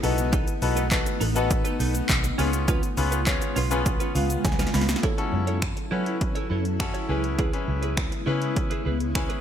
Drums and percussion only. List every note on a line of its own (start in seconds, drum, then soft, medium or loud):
0.04 open hi-hat medium
0.04 shaker medium
0.18 closed hi-hat medium
0.18 shaker medium
0.33 kick loud
0.33 closed hi-hat medium
0.33 shaker medium
0.48 closed hi-hat medium
0.48 shaker soft
0.62 open hi-hat medium
0.62 shaker medium
0.77 closed hi-hat medium
0.77 shaker medium
0.91 kick loud
0.91 clap loud
0.91 closed hi-hat medium
0.91 shaker medium
1.06 closed hi-hat medium
1.06 shaker medium
1.21 open hi-hat medium
1.21 shaker medium
1.36 closed hi-hat medium
1.36 shaker medium
1.51 kick loud
1.51 closed hi-hat medium
1.51 shaker medium
1.65 closed hi-hat medium
1.65 shaker medium
1.80 open hi-hat medium
1.80 shaker medium
1.95 closed hi-hat medium
1.95 shaker medium
2.09 kick loud
2.09 clap loud
2.09 closed hi-hat medium
2.09 shaker medium
2.24 closed hi-hat medium
2.24 shaker medium
2.39 open hi-hat medium
2.39 shaker medium
2.53 closed hi-hat medium
2.53 shaker medium
2.68 kick loud
2.68 closed hi-hat medium
2.68 shaker medium
2.83 closed hi-hat soft
2.83 shaker medium
2.97 open hi-hat medium
2.97 shaker medium
3.12 closed hi-hat medium
3.12 shaker medium
3.27 kick loud
3.27 clap loud
3.27 closed hi-hat medium
3.27 shaker medium
3.42 closed hi-hat medium
3.42 shaker medium
3.56 open hi-hat medium
3.56 shaker medium
3.71 closed hi-hat medium
3.71 shaker medium
3.86 kick loud
3.86 closed hi-hat medium
3.86 shaker medium
4.00 closed hi-hat medium
4.00 shaker medium
4.16 open hi-hat medium
4.16 shaker medium
4.30 closed hi-hat medium
4.30 shaker medium
4.45 kick loud
4.45 snare medium
4.45 closed hi-hat medium
4.45 shaker medium
4.52 snare medium
4.59 snare medium
4.59 closed hi-hat medium
4.59 shaker medium
4.67 snare medium
4.74 snare medium
4.74 open hi-hat medium
4.74 shaker medium
4.81 snare medium
4.89 snare loud
4.89 closed hi-hat medium
4.89 shaker medium
4.96 snare loud
5.03 kick loud
5.03 closed hi-hat medium
5.18 closed hi-hat soft
5.47 closed hi-hat medium
5.62 finger snap loud
5.62 kick loud
5.62 closed hi-hat medium
5.77 closed hi-hat medium
6.06 closed hi-hat medium
6.21 kick loud
6.21 closed hi-hat medium
6.36 closed hi-hat medium
6.65 closed hi-hat medium
6.80 finger snap loud
6.80 kick loud
6.80 closed hi-hat medium
6.95 closed hi-hat medium
7.24 closed hi-hat medium
7.39 kick loud
7.39 closed hi-hat medium
7.53 closed hi-hat soft
7.83 closed hi-hat medium
7.97 finger snap loud
7.97 kick loud
7.97 closed hi-hat medium
8.12 closed hi-hat medium
8.42 closed hi-hat medium
8.56 kick loud
8.56 closed hi-hat medium
8.71 closed hi-hat medium
9.00 closed hi-hat medium
9.15 finger snap loud
9.15 kick loud
9.15 closed hi-hat medium
9.30 closed hi-hat medium